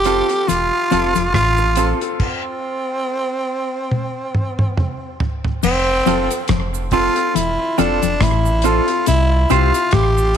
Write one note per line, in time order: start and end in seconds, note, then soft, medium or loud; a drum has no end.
0.00 0.21 F1 loud
0.00 0.50 G4 loud
0.04 0.28 C4 medium
0.04 0.26 C4 medium
0.04 0.29 F4 medium
0.04 0.27 F4 medium
0.04 0.29 A4 medium
0.04 0.27 A4 medium
0.04 closed hi-hat medium
0.04 cabasa soft
0.29 0.48 C4 medium
0.29 0.48 F4 medium
0.29 0.49 A4 medium
0.29 closed hi-hat medium
0.48 0.70 E1 medium
0.48 0.63 E2 medium
0.48 1.34 F4 loud
0.48 closed hi-hat medium
0.48 cabasa medium
0.91 1.13 F1 loud
0.91 1.06 F2 medium
0.91 1.15 C4 loud
0.91 1.12 C4 medium
0.91 1.15 F4 medium
0.91 1.13 F4 medium
0.91 1.15 A4 loud
0.91 1.13 A4 medium
0.91 closed hi-hat medium
0.91 cabasa medium
1.15 1.33 F1 medium
1.15 1.26 F2 medium
1.15 muted clean electric guitar stroke soft
1.15 closed hi-hat medium
1.15 cabasa medium
1.34 1.93 A1 medium
1.34 1.60 A2 medium
1.34 1.91 F4 loud
1.34 kick loud
1.34 cross-stick medium
1.34 closed hi-hat medium
1.57 muted clean electric guitar stroke soft
1.57 cabasa soft
1.76 2.00 C4 medium
1.76 1.98 C4 medium
1.76 2.00 F4 medium
1.76 1.98 F4 medium
1.76 2.01 A4 loud
1.76 1.99 A4 medium
1.76 closed hi-hat medium
1.76 cabasa medium
2.01 2.20 C4 medium
2.01 2.20 F4 medium
2.01 2.20 A4 medium
2.01 closed hi-hat medium
2.20 5.17 C4 medium
2.20 kick loud
2.20 crash medium
3.91 high tom medium
4.35 mid tom medium
4.59 mid tom medium
4.77 mid tom medium
5.20 floor tom loud
5.45 floor tom medium
5.63 6.01 F1 loud
5.63 5.89 F2 medium
5.63 6.46 C4 loud
5.63 crash loud
5.63 cabasa medium
6.06 6.28 F1 loud
6.06 6.21 F2 medium
6.06 6.30 C4 medium
6.06 6.28 C4 loud
6.06 6.30 F4 medium
6.06 6.28 F4 medium
6.06 6.31 A4 loud
6.06 6.28 A4 medium
6.06 closed hi-hat medium
6.06 cabasa medium
6.30 closed hi-hat medium
6.30 cabasa medium
6.48 7.08 F1 loud
6.48 6.75 F2 medium
6.48 kick loud
6.48 cross-stick loud
6.48 closed hi-hat medium
6.74 cabasa medium
6.91 7.15 C4 medium
6.91 7.13 C4 medium
6.91 7.15 F4 medium
6.91 7.37 F4 medium
6.91 7.14 F4 medium
6.91 7.16 A4 loud
6.91 7.14 A4 medium
6.91 kick medium
6.91 open hi-hat medium
6.91 cabasa soft
7.16 7.35 C4 medium
7.16 7.35 F4 medium
7.16 7.35 A4 medium
7.16 muted clean electric guitar stroke soft
7.16 closed hi-hat soft
7.35 7.57 E1 loud
7.35 7.50 E2 loud
7.35 7.80 E4 medium
7.35 closed hi-hat medium
7.35 cabasa medium
7.78 8.00 F1 loud
7.78 7.93 F2 medium
7.78 8.02 C4 loud
7.78 7.99 C4 medium
7.78 8.24 D4 medium
7.78 8.02 F4 loud
7.78 7.99 F4 loud
7.78 8.02 A4 loud
7.78 8.00 A4 loud
7.78 closed hi-hat medium
7.78 cabasa medium
8.02 8.23 F1 medium
8.02 8.14 F2 medium
8.02 closed hi-hat medium
8.02 cabasa medium
8.21 8.80 A1 loud
8.21 8.47 A2 medium
8.21 8.67 E4 medium
8.21 kick loud
8.21 cross-stick loud
8.21 closed hi-hat loud
8.45 cabasa medium
8.62 8.86 C4 medium
8.62 8.85 C4 medium
8.62 8.87 F4 medium
8.62 8.85 F4 medium
8.62 9.07 F4 medium
8.62 8.88 A4 medium
8.62 closed hi-hat medium
8.62 cabasa medium
8.66 8.86 A4 medium
8.88 9.07 C4 medium
8.88 9.07 F4 medium
8.88 9.07 A4 medium
8.88 closed hi-hat soft
9.06 9.45 C2 loud
9.06 9.33 C3 medium
9.06 9.52 E4 loud
9.06 closed hi-hat loud
9.06 cabasa medium
9.50 9.72 C2 loud
9.50 9.64 C3 medium
9.50 9.74 C4 medium
9.50 9.71 E4 medium
9.50 9.74 E4 medium
9.50 9.95 F4 loud
9.50 9.71 G4 medium
9.50 9.74 G4 loud
9.50 9.72 C5 loud
9.50 closed hi-hat medium
9.50 cabasa medium
9.74 closed hi-hat medium
9.74 cabasa medium
9.91 10.37 A1 loud
9.91 10.18 A2 medium
9.91 10.37 G4 loud
9.91 kick loud
9.91 cross-stick loud
9.91 closed hi-hat medium
10.18 cabasa medium